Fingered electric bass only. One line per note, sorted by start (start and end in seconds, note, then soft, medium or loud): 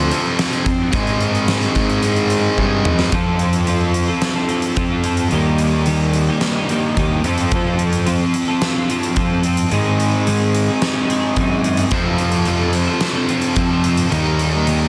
0.00 0.10 D2 medium
0.66 0.90 F2 medium
0.94 1.65 G#2 loud
1.75 2.47 G#2 medium
2.57 2.82 G2 medium
2.85 3.10 F2 medium
3.12 4.08 F2 medium
4.77 5.25 F2 medium
5.32 6.28 D#2 loud
6.97 7.21 D#2 medium
7.24 8.20 F2 medium
9.17 9.65 F2 medium
9.72 10.68 G#2 medium
11.36 11.84 F#2 medium
11.91 12.87 F2 medium
13.56 14.04 F2 medium
14.12 14.88 D#2 loud